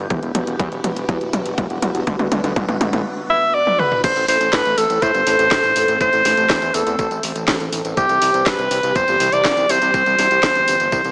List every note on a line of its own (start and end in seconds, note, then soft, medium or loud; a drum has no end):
0.00 4.00 B3 medium
0.00 2.03 G4 medium
0.10 0.19 E1 loud
0.10 2.05 E3 medium
0.10 4.00 F#4 medium
0.10 kick loud
0.10 closed hi-hat soft
0.10 mid tom medium
0.23 0.32 E1 medium
0.23 closed hi-hat soft
0.35 0.44 E1 loud
0.35 closed hi-hat medium
0.35 mid tom medium
0.47 0.56 E1 medium
0.47 closed hi-hat medium
0.59 0.69 E2 loud
0.59 kick loud
0.59 closed hi-hat medium
0.59 mid tom medium
0.72 0.81 E1 medium
0.72 closed hi-hat soft
0.84 0.93 E1 medium
0.84 closed hi-hat medium
0.84 mid tom medium
0.96 1.06 E1 medium
0.96 closed hi-hat medium
1.09 1.18 E2 loud
1.09 kick loud
1.09 closed hi-hat medium
1.09 mid tom medium
1.21 1.30 D1 medium
1.21 closed hi-hat soft
1.33 1.42 E1 medium
1.33 closed hi-hat medium
1.33 mid tom medium
1.46 1.55 E1 medium
1.46 closed hi-hat medium
1.58 1.67 E1 medium
1.58 kick loud
1.58 closed hi-hat medium
1.58 mid tom medium
1.70 1.79 E1 medium
1.70 closed hi-hat soft
1.82 1.92 E1 medium
1.82 closed hi-hat medium
1.82 mid tom medium
1.95 2.04 E1 medium
1.95 closed hi-hat soft
2.07 2.16 D2 loud
2.07 4.02 D3 medium
2.07 4.02 B4 medium
2.07 kick loud
2.07 closed hi-hat medium
2.07 mid tom medium
2.19 2.29 D2 medium
2.19 closed hi-hat soft
2.19 mid tom medium
2.32 2.41 D2 loud
2.32 closed hi-hat medium
2.32 mid tom loud
2.44 2.53 D2 medium
2.44 closed hi-hat soft
2.44 mid tom medium
2.56 2.65 A1 loud
2.56 kick loud
2.56 closed hi-hat medium
2.56 mid tom loud
2.69 2.78 A1 medium
2.69 closed hi-hat soft
2.69 mid tom medium
2.81 2.90 A1 medium
2.81 closed hi-hat medium
2.81 mid tom loud
2.93 3.02 A1 medium
2.93 closed hi-hat medium
2.93 mid tom medium
3.30 3.56 E5 loud
3.54 3.81 D5 loud
3.67 high tom medium
3.79 4.03 B4 loud
3.79 mid tom medium
3.92 mid tom medium
4.04 4.13 A1 loud
4.04 11.12 E3 medium
4.04 7.93 A3 medium
4.04 11.12 C4 medium
4.04 7.93 A4 medium
4.04 4.27 C5 loud
4.04 kick loud
4.04 closed hi-hat medium
4.04 crash loud
4.04 tambourine soft
4.16 4.25 A1 medium
4.16 closed hi-hat soft
4.16 tambourine soft
4.28 4.37 A1 loud
4.28 4.55 C5 loud
4.28 open hi-hat loud
4.28 tambourine medium
4.41 4.50 A1 medium
4.41 closed hi-hat medium
4.41 tambourine soft
4.53 4.62 A2 loud
4.53 4.79 B4 loud
4.53 kick loud
4.53 snare loud
4.53 clap loud
4.53 closed hi-hat medium
4.53 tambourine soft
4.65 4.74 A1 medium
4.65 closed hi-hat soft
4.65 tambourine soft
4.78 4.87 A1 medium
4.78 5.04 A4 medium
4.78 open hi-hat loud
4.78 tambourine medium
4.90 4.99 A1 medium
4.90 closed hi-hat medium
4.90 tambourine soft
5.02 5.11 A2 loud
5.02 6.00 C5 loud
5.02 kick loud
5.02 closed hi-hat medium
5.02 tambourine soft
5.14 5.24 G1 medium
5.14 closed hi-hat soft
5.14 tambourine soft
5.27 5.36 A1 loud
5.27 open hi-hat loud
5.27 tambourine medium
5.39 5.48 A1 medium
5.39 closed hi-hat medium
5.39 tambourine soft
5.51 5.60 A1 loud
5.51 kick loud
5.51 snare loud
5.51 clap loud
5.51 closed hi-hat medium
5.51 tambourine soft
5.64 5.73 A1 medium
5.64 closed hi-hat soft
5.64 tambourine soft
5.76 5.85 A1 medium
5.76 open hi-hat loud
5.76 tambourine medium
5.88 5.97 A1 medium
5.88 closed hi-hat medium
5.88 tambourine soft
6.01 6.10 A1 loud
6.01 6.76 C5 loud
6.01 kick loud
6.01 closed hi-hat medium
6.01 tambourine soft
6.13 6.22 A1 medium
6.13 closed hi-hat soft
6.13 tambourine soft
6.25 6.34 A1 loud
6.25 snare soft
6.25 open hi-hat loud
6.25 tambourine medium
6.37 6.47 A1 medium
6.37 closed hi-hat medium
6.37 tambourine soft
6.50 6.59 E2 loud
6.50 kick loud
6.50 snare loud
6.50 clap loud
6.50 closed hi-hat medium
6.50 tambourine soft
6.62 6.71 E2 medium
6.62 closed hi-hat soft
6.62 tambourine soft
6.74 6.83 E2 medium
6.74 7.23 A4 medium
6.74 open hi-hat loud
6.74 tambourine medium
6.87 6.96 E2 medium
6.87 closed hi-hat medium
6.87 tambourine soft
6.99 7.08 A1 loud
6.99 kick loud
6.99 closed hi-hat medium
6.99 tambourine soft
7.11 7.20 A1 medium
7.11 closed hi-hat soft
7.11 tambourine soft
7.23 7.33 A1 loud
7.23 open hi-hat loud
7.23 tambourine medium
7.36 7.45 A1 medium
7.36 closed hi-hat medium
7.36 tambourine soft
7.48 7.57 A1 loud
7.48 kick loud
7.48 snare loud
7.48 clap loud
7.48 closed hi-hat medium
7.48 tambourine soft
7.60 7.69 A1 medium
7.60 closed hi-hat soft
7.60 tambourine soft
7.73 7.82 A1 medium
7.73 open hi-hat loud
7.73 tambourine medium
7.85 7.94 A1 medium
7.85 closed hi-hat medium
7.85 tambourine soft
7.97 8.06 C2 loud
7.97 11.12 G3 medium
7.97 11.12 G4 medium
7.97 8.48 G4 medium
7.97 kick loud
7.97 closed hi-hat medium
7.97 tambourine soft
8.09 8.19 C2 medium
8.09 closed hi-hat soft
8.09 tambourine soft
8.22 8.31 C2 medium
8.22 open hi-hat loud
8.22 tambourine medium
8.34 8.43 C2 medium
8.34 closed hi-hat medium
8.34 tambourine soft
8.46 8.56 G1 loud
8.46 8.97 B4 loud
8.46 kick loud
8.46 snare loud
8.46 clap loud
8.46 closed hi-hat medium
8.46 tambourine soft
8.59 8.68 C2 medium
8.59 closed hi-hat soft
8.59 tambourine soft
8.71 8.80 C2 medium
8.71 open hi-hat loud
8.71 tambourine medium
8.83 8.92 C2 medium
8.83 closed hi-hat medium
8.83 tambourine soft
8.96 9.05 G1 loud
8.96 9.34 C5 loud
8.96 kick loud
8.96 closed hi-hat medium
8.96 tambourine soft
9.08 9.17 G1 medium
9.08 closed hi-hat soft
9.08 tambourine soft
9.20 9.29 C2 medium
9.20 open hi-hat loud
9.20 tambourine medium
9.32 9.42 C2 medium
9.32 9.71 D5 loud
9.32 closed hi-hat medium
9.32 tambourine soft
9.45 9.54 C2 loud
9.45 kick loud
9.45 snare loud
9.45 clap medium
9.45 closed hi-hat medium
9.45 tambourine soft
9.57 9.66 C2 medium
9.57 closed hi-hat soft
9.57 tambourine soft
9.69 9.79 C2 medium
9.69 11.12 C5 loud
9.69 open hi-hat loud
9.69 tambourine medium
9.82 9.91 C2 medium
9.82 closed hi-hat medium
9.82 tambourine soft
9.94 10.03 C2 loud
9.94 kick loud
9.94 closed hi-hat medium
9.94 tambourine soft
10.06 10.15 C2 medium
10.06 closed hi-hat soft
10.06 tambourine soft
10.19 10.28 C2 loud
10.19 snare soft
10.19 open hi-hat loud
10.19 tambourine medium
10.31 10.40 C2 medium
10.31 closed hi-hat soft
10.31 tambourine soft
10.43 10.52 G1 loud
10.43 kick loud
10.43 snare loud
10.43 clap loud
10.43 closed hi-hat medium
10.43 tambourine soft
10.55 10.65 G1 medium
10.55 closed hi-hat soft
10.55 tambourine soft
10.68 10.77 G1 medium
10.68 open hi-hat loud
10.68 tambourine medium
10.80 10.89 G1 medium
10.80 closed hi-hat medium
10.80 tambourine soft
10.92 11.01 C2 loud
10.92 kick loud
10.92 closed hi-hat medium
10.92 tambourine soft
11.04 11.12 C2 medium
11.04 closed hi-hat soft
11.04 tambourine soft